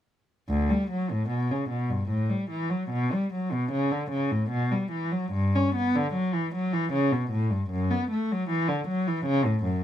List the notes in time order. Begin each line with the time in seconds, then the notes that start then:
0.49 D2
0.70 G3
0.91 F#3
1.12 A2
1.30 B2
1.51 C#3
1.70 B2
1.90 G2
2.10 A2
2.30 G3
2.51 E3
2.70 F#3
2.90 B2
3.13 G3
3.33 F#3
3.52 B2
3.72 C#3
3.91 D3
4.11 C#3
4.31 A2
4.51 B2
4.71 G3
4.92 E3
5.12 F#3
5.32 G2
5.56 C#4
5.76 B3
5.96 D3
6.13 F#3
6.34 E3
6.55 F#3
6.73 E3
6.93 C#3
7.12 B2
7.31 A2
7.51 G2
7.70 F#2
7.91 B3
8.11 A3
8.32 F#3
8.49 E3
8.68 D3
8.88 F#3
9.08 E3
9.26 C#3
9.45 A2
9.64 F#2